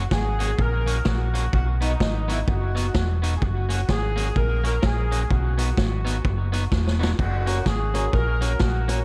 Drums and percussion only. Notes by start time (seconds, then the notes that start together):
0.11 kick, snare
0.40 closed hi-hat
0.59 kick
0.87 closed hi-hat
1.05 kick, snare
1.35 closed hi-hat
1.53 kick
1.82 closed hi-hat
2.00 kick, snare
2.29 closed hi-hat
2.48 kick
2.77 closed hi-hat
2.94 kick, snare
3.24 closed hi-hat
3.42 kick
3.70 closed hi-hat
3.89 kick, snare
4.17 closed hi-hat
4.36 kick
4.65 closed hi-hat
4.83 kick, snare
5.12 closed hi-hat
5.30 kick
5.58 closed hi-hat
5.77 kick, snare
6.06 closed hi-hat
6.25 kick
6.53 closed hi-hat
6.72 kick, snare
6.87 snare
7.03 snare
7.19 kick, crash
7.47 closed hi-hat
7.66 kick, snare
7.95 closed hi-hat
8.13 kick
8.42 closed hi-hat
8.59 kick, snare
8.89 closed hi-hat